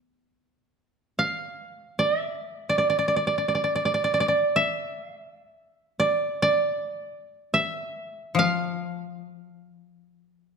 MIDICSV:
0, 0, Header, 1, 3, 480
1, 0, Start_track
1, 0, Tempo, 500000
1, 10144, End_track
2, 0, Start_track
2, 0, Title_t, "Koto"
2, 0, Program_c, 0, 107
2, 1140, Note_on_c, 0, 77, 58
2, 1910, Note_on_c, 0, 74, 55
2, 1968, Note_off_c, 0, 77, 0
2, 2102, Note_off_c, 0, 74, 0
2, 2102, Note_on_c, 0, 76, 55
2, 2587, Note_on_c, 0, 74, 47
2, 2666, Note_off_c, 0, 74, 0
2, 2670, Note_on_c, 0, 74, 38
2, 2777, Note_off_c, 0, 74, 0
2, 2781, Note_on_c, 0, 74, 38
2, 2863, Note_off_c, 0, 74, 0
2, 2866, Note_on_c, 0, 74, 37
2, 2953, Note_off_c, 0, 74, 0
2, 2957, Note_on_c, 0, 74, 36
2, 3033, Note_off_c, 0, 74, 0
2, 3037, Note_on_c, 0, 74, 32
2, 3136, Note_off_c, 0, 74, 0
2, 3140, Note_on_c, 0, 74, 37
2, 3240, Note_off_c, 0, 74, 0
2, 3243, Note_on_c, 0, 74, 33
2, 3340, Note_off_c, 0, 74, 0
2, 3343, Note_off_c, 0, 76, 0
2, 3344, Note_on_c, 0, 74, 35
2, 3402, Note_off_c, 0, 74, 0
2, 3406, Note_on_c, 0, 74, 32
2, 3489, Note_off_c, 0, 74, 0
2, 3493, Note_on_c, 0, 74, 35
2, 3601, Note_off_c, 0, 74, 0
2, 3605, Note_on_c, 0, 74, 33
2, 3695, Note_off_c, 0, 74, 0
2, 3699, Note_on_c, 0, 74, 39
2, 3780, Note_off_c, 0, 74, 0
2, 3784, Note_on_c, 0, 74, 36
2, 3876, Note_off_c, 0, 74, 0
2, 3880, Note_on_c, 0, 74, 40
2, 3969, Note_off_c, 0, 74, 0
2, 3973, Note_on_c, 0, 74, 41
2, 4032, Note_off_c, 0, 74, 0
2, 4035, Note_on_c, 0, 74, 48
2, 4108, Note_off_c, 0, 74, 0
2, 4112, Note_on_c, 0, 74, 44
2, 4377, Note_on_c, 0, 76, 61
2, 5649, Note_off_c, 0, 74, 0
2, 5756, Note_on_c, 0, 74, 54
2, 5810, Note_off_c, 0, 76, 0
2, 6163, Note_off_c, 0, 74, 0
2, 6167, Note_on_c, 0, 74, 63
2, 7236, Note_on_c, 0, 76, 56
2, 7703, Note_off_c, 0, 74, 0
2, 8052, Note_on_c, 0, 77, 56
2, 8110, Note_off_c, 0, 76, 0
2, 10144, Note_off_c, 0, 77, 0
2, 10144, End_track
3, 0, Start_track
3, 0, Title_t, "Koto"
3, 0, Program_c, 1, 107
3, 0, Note_on_c, 1, 57, 34
3, 0, Note_on_c, 1, 59, 30
3, 352, Note_off_c, 1, 57, 0
3, 1098, Note_off_c, 1, 59, 0
3, 8013, Note_on_c, 1, 53, 45
3, 10144, Note_off_c, 1, 53, 0
3, 10144, End_track
0, 0, End_of_file